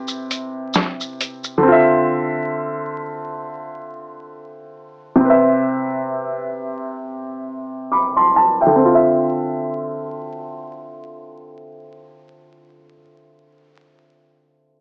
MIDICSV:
0, 0, Header, 1, 3, 480
1, 0, Start_track
1, 0, Tempo, 895522
1, 874, Time_signature, 4, 2, 24, 8
1, 7937, End_track
2, 0, Start_track
2, 0, Title_t, "Upright piano"
2, 0, Program_c, 0, 0
2, 0, Control_c, 0, 64, 127
2, 0, Note_on_c, 0, 48, 73
2, 0, Note_on_c, 0, 60, 65
2, 0, Note_on_c, 0, 64, 58
2, 0, Note_on_c, 0, 71, 83
2, 838, Note_off_c, 0, 48, 0
2, 845, Note_on_c, 0, 50, 70
2, 851, Note_off_c, 0, 60, 0
2, 863, Note_off_c, 0, 64, 0
2, 872, Note_on_c, 0, 60, 65
2, 877, Note_off_c, 0, 71, 0
2, 882, Control_c, 0, 64, 0
2, 898, Note_on_c, 0, 65, 61
2, 923, Note_on_c, 0, 76, 76
2, 984, Control_c, 0, 64, 127
2, 2758, Note_off_c, 0, 50, 0
2, 2764, Note_on_c, 0, 48, 75
2, 2772, Note_off_c, 0, 60, 0
2, 2785, Note_off_c, 0, 65, 0
2, 2790, Note_on_c, 0, 60, 62
2, 2797, Note_off_c, 0, 76, 0
2, 2800, Control_c, 0, 64, 0
2, 2815, Note_on_c, 0, 71, 59
2, 2841, Note_on_c, 0, 76, 78
2, 2896, Control_c, 0, 64, 127
2, 3996, Note_off_c, 0, 76, 0
2, 4242, Note_on_c, 0, 86, 52
2, 4246, Note_on_c, 0, 83, 39
2, 4367, Note_off_c, 0, 86, 0
2, 4369, Note_off_c, 0, 83, 0
2, 4376, Note_on_c, 0, 84, 69
2, 4378, Note_on_c, 0, 81, 51
2, 4472, Note_off_c, 0, 84, 0
2, 4474, Note_off_c, 0, 81, 0
2, 4482, Note_on_c, 0, 81, 70
2, 4607, Note_off_c, 0, 81, 0
2, 4615, Note_on_c, 0, 79, 59
2, 4619, Note_on_c, 0, 76, 46
2, 4644, Note_on_c, 0, 50, 67
2, 4678, Note_off_c, 0, 48, 0
2, 4686, Note_off_c, 0, 60, 0
2, 4694, Note_on_c, 0, 60, 66
2, 4703, Note_off_c, 0, 71, 0
2, 4722, Control_c, 0, 64, 0
2, 4744, Note_on_c, 0, 65, 63
2, 4787, Note_off_c, 0, 76, 0
2, 4795, Note_on_c, 0, 76, 75
2, 4831, Control_c, 0, 64, 127
2, 4840, Note_off_c, 0, 79, 0
2, 6816, Note_off_c, 0, 50, 0
2, 6866, Note_off_c, 0, 60, 0
2, 6916, Note_off_c, 0, 65, 0
2, 6967, Note_off_c, 0, 76, 0
2, 7937, End_track
3, 0, Start_track
3, 0, Title_t, "Drums"
3, 41, Note_on_c, 9, 82, 41
3, 94, Note_off_c, 9, 82, 0
3, 165, Note_on_c, 9, 42, 52
3, 165, Note_on_c, 9, 82, 42
3, 219, Note_off_c, 9, 42, 0
3, 219, Note_off_c, 9, 82, 0
3, 394, Note_on_c, 9, 82, 60
3, 405, Note_on_c, 9, 38, 83
3, 448, Note_off_c, 9, 82, 0
3, 459, Note_off_c, 9, 38, 0
3, 538, Note_on_c, 9, 82, 36
3, 592, Note_off_c, 9, 82, 0
3, 646, Note_on_c, 9, 42, 64
3, 646, Note_on_c, 9, 82, 43
3, 700, Note_off_c, 9, 42, 0
3, 700, Note_off_c, 9, 82, 0
3, 771, Note_on_c, 9, 82, 46
3, 825, Note_off_c, 9, 82, 0
3, 7937, End_track
0, 0, End_of_file